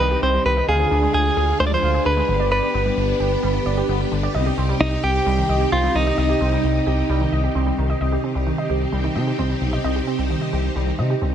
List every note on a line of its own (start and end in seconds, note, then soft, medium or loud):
0.00 0.16 C2 loud
0.00 0.65 C3 medium
0.00 0.65 C4 medium
0.00 0.65 D#4 medium
0.00 0.65 G4 medium
0.00 0.23 B4 loud
0.11 0.21 G4 medium
0.22 0.38 C2 loud
0.22 0.33 C4 medium
0.22 0.45 C5 loud
0.34 0.44 G3 medium
0.45 0.61 C2 loud
0.45 0.56 D#3 medium
0.45 0.67 B4 loud
0.57 0.67 D#5 medium
0.68 0.84 D2 loud
0.68 2.27 D3 medium
0.68 4.31 D4 medium
0.68 2.27 F4 medium
0.68 2.27 G#4 medium
0.68 1.13 G#4 loud
0.68 0.78 F5 loud
0.80 0.90 G#4 medium
0.91 1.07 D2 loud
0.91 1.01 D4 medium
1.03 1.13 G#3 medium
1.14 1.30 D2 loud
1.14 1.60 G#4 loud
1.37 1.53 D2 loud
1.37 1.47 G#4 medium
1.60 1.76 D2 loud
1.60 1.70 G#3 medium
1.60 1.66 C5 loud
1.67 1.74 D5 medium
1.71 1.81 F3 medium
1.71 2.06 C5 loud
1.83 1.99 D2 loud
1.83 1.93 F5 medium
1.94 2.04 G#4 medium
2.05 2.22 D2 loud
2.05 2.16 D4 medium
2.05 2.50 B4 loud
2.17 2.27 G#3 medium
2.28 2.61 G1 loud
2.28 2.38 D3 medium
2.28 4.33 B3 medium
2.28 7.97 G4 medium
2.40 2.50 D5 medium
2.51 3.85 B4 medium
2.51 2.61 D5 loud
2.63 2.73 G4 medium
2.74 2.90 G1 loud
2.74 2.84 B3 medium
2.86 2.96 G3 medium
2.97 3.13 G1 loud
3.20 3.36 G1 loud
3.20 3.30 G4 medium
3.43 3.59 G1 loud
3.43 3.53 G3 medium
3.54 3.65 D3 medium
3.66 3.82 G1 loud
3.66 3.76 D5 medium
3.77 3.87 G4 medium
3.89 4.05 G1 loud
3.89 3.99 B3 medium
4.00 4.10 G3 medium
4.12 4.28 G1 loud
4.12 4.22 D3 medium
4.23 4.33 D5 medium
4.35 4.51 C2 loud
4.35 7.98 C3 medium
4.35 7.97 C4 medium
4.35 7.97 D#4 medium
4.35 4.45 D#5 loud
4.46 4.56 G4 medium
4.58 4.74 C2 loud
4.58 4.68 C4 medium
4.69 4.79 G3 medium
4.80 4.96 C2 loud
4.80 5.02 D#4 loud
5.03 5.19 C2 loud
5.03 5.13 G4 medium
5.03 5.72 G4 loud
5.26 5.42 C2 loud
5.26 5.36 G3 medium
5.38 5.48 D#3 medium
5.49 5.65 C2 loud
5.49 5.59 D#5 medium
5.61 5.71 G4 medium
5.72 5.88 C2 loud
5.72 5.82 C4 medium
5.72 5.96 F4 loud
5.84 5.94 G3 medium
5.95 6.11 C2 loud
5.95 6.05 D#3 medium
5.95 7.75 D#4 medium
6.06 6.17 D#5 medium
6.18 6.34 C2 loud
6.18 6.28 D#5 loud
6.29 6.39 G4 medium
6.41 6.57 C2 loud
6.41 6.51 C4 medium
6.52 6.62 G3 medium
6.64 6.80 C2 loud
6.87 7.03 C2 loud
6.87 6.97 G4 medium
7.09 7.25 C2 loud
7.09 7.20 G3 medium
7.21 7.31 D#3 medium
7.32 7.48 C2 loud
7.32 7.43 D#5 medium
7.44 7.54 G4 medium
7.55 7.71 C2 loud
7.55 7.65 C4 medium
7.67 7.77 G3 medium
7.78 7.94 C2 loud
7.78 7.88 D#3 medium
7.90 8.00 D#5 medium
8.01 8.17 C2 loud
8.01 11.35 C3 medium
8.01 11.35 C4 medium
8.01 11.35 D#4 medium
8.01 11.35 G4 medium
8.01 8.11 D#5 loud
8.12 8.23 G4 medium
8.24 8.34 C4 medium
8.35 8.51 C2 loud
8.35 8.45 G3 medium
8.47 8.57 D#3 medium
8.58 8.68 D#5 medium
8.70 8.86 C2 medium
8.70 8.80 G4 medium
8.93 9.09 C2 loud
8.93 9.03 G3 medium
9.04 9.14 D#3 medium
9.15 9.32 C3 loud
9.15 9.26 D#5 medium
9.27 9.37 G4 medium
9.38 9.54 C2 medium
9.38 9.49 C4 medium
9.50 9.60 G3 medium
9.61 9.77 B1 loud
9.73 9.83 D#5 medium
9.84 10.00 C2 loud
9.84 9.94 D#5 loud
9.96 10.06 G4 medium
10.07 10.17 C4 medium
10.19 10.35 C2 medium
10.19 10.29 G3 medium
10.30 10.40 D#3 medium
10.42 10.52 D#5 medium
10.53 10.69 C2 loud
10.53 10.63 G4 medium
10.76 10.92 C2 loud
10.76 10.86 G3 medium
10.87 10.97 D#3 medium
10.99 11.15 C3 loud
10.99 11.09 D#5 medium
11.10 11.20 G4 medium
11.22 11.35 C2 loud
11.22 11.32 C4 medium